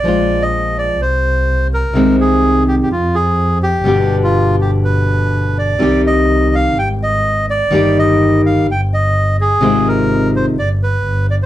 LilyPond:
<<
  \new Staff \with { instrumentName = "Bandoneon" } { \time 4/4 \key g \phrygian \tempo 4 = 126 d''8. ees''8. d''8 c''4. bes'8~ | bes'8 aes'4 g'16. g'32 f'8 aes'4 g'8~ | g'8. f'8. g'8 b'4. d''8~ | d''8 ees''4 f''8 g''8 ees''4 d''8~ |
d''8 ees''4 f''8 g''8 ees''4 aes'8~ | aes'8 bes'4 c''8 d''8 b'4 d''16 r16 | }
  \new Staff \with { instrumentName = "Nylon-string guitar" } { \clef bass \time 4/4 \key g \phrygian <f aes f'>2 r2 | <c ees aes c'>2 r2 | <b, d g b g'>1 | <c ees g g'>2 r2 |
<ees g bes ees' g'>2 r2 | <c ees aes c' f'>2 r2 | }
  \new Staff \with { instrumentName = "Double bass" } { \clef bass \time 4/4 \key g \phrygian bes,,2 c,2 | c,2 f,2 | g,,1 | c,2 aes,,2 |
g,,2 g,,2 | aes,,2 g,,4 g,,4 | }
>>